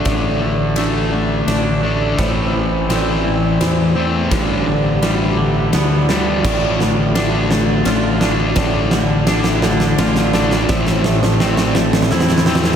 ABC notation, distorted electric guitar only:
X:1
M:3/4
L:1/8
Q:1/4=85
K:Ddor
V:1 name="Distorted electric guitar" clef=bass
[D,A,D] [D,A,] [D,A,D] [D,A,] [D,A,] [D,A,D] | [A,,E,A,] [A,,E,] [A,,E,A,] [A,,E,] [A,,E,] [A,,E,A,] | [G,,D,G,] [G,,D,] [G,,D,G,] [G,,D,] [G,,D,] [G,,D,G,] | [D,A,D] [D,A,] [D,A,D] [D,A,] [D,A,] [D,A,D] |
[D,A,D] [D,A,] [D,A,D] [D,A,] [D,A,] [D,A,D] | [A,,E,A,] [A,,E,] [A,,E,A,] [A,,E,] [A,,E,] [A,,E,A,] |]